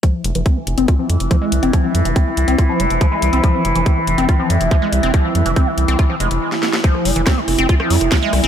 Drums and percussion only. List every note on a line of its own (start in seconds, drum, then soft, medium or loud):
0.03 kick loud
0.03 closed hi-hat medium
0.24 closed hi-hat medium
0.35 closed hi-hat medium
0.46 kick loud
0.46 closed hi-hat medium
0.67 closed hi-hat medium
0.78 closed hi-hat medium
0.88 kick loud
0.88 closed hi-hat medium
1.10 closed hi-hat medium
1.20 closed hi-hat medium
1.31 kick loud
1.31 closed hi-hat medium
1.52 closed hi-hat medium
1.63 closed hi-hat medium
1.73 kick loud
1.73 closed hi-hat medium
1.95 closed hi-hat medium
2.05 closed hi-hat medium
2.16 kick loud
2.16 closed hi-hat medium
2.37 closed hi-hat medium
2.48 closed hi-hat medium
2.58 kick loud
2.58 closed hi-hat medium
2.80 closed hi-hat medium
2.90 closed hi-hat medium
3.01 kick loud
3.01 closed hi-hat medium
3.22 closed hi-hat medium
3.33 closed hi-hat medium
3.44 kick loud
3.44 closed hi-hat medium
3.65 closed hi-hat medium
3.75 closed hi-hat medium
3.86 kick loud
3.86 closed hi-hat medium
4.07 closed hi-hat medium
4.18 closed hi-hat medium
4.29 kick loud
4.29 closed hi-hat medium
4.50 closed hi-hat medium
4.61 closed hi-hat medium
4.71 kick loud
4.71 closed hi-hat medium
4.93 closed hi-hat medium
5.03 closed hi-hat medium
5.14 kick loud
5.14 closed hi-hat medium
5.35 closed hi-hat medium
5.46 closed hi-hat medium
5.56 kick loud
5.56 closed hi-hat medium
5.78 closed hi-hat medium
5.88 closed hi-hat medium
5.99 kick loud
5.99 closed hi-hat medium
6.20 closed hi-hat medium
6.31 closed hi-hat medium
6.52 snare medium
6.63 snare medium
6.73 snare medium
6.84 kick loud
6.84 closed hi-hat medium
6.95 cross-stick soft
7.05 open hi-hat loud
7.16 closed hi-hat medium
7.27 kick loud
7.27 cross-stick medium
7.27 snare loud
7.27 closed hi-hat medium
7.48 cross-stick soft
7.48 open hi-hat loud
7.59 closed hi-hat medium
7.69 kick loud
7.69 closed hi-hat medium
7.80 cross-stick medium
7.90 open hi-hat loud
8.01 cross-stick soft
8.01 closed hi-hat medium
8.12 kick loud
8.12 snare loud
8.12 closed hi-hat medium
8.33 cross-stick medium
8.33 open hi-hat loud
8.44 closed hi-hat medium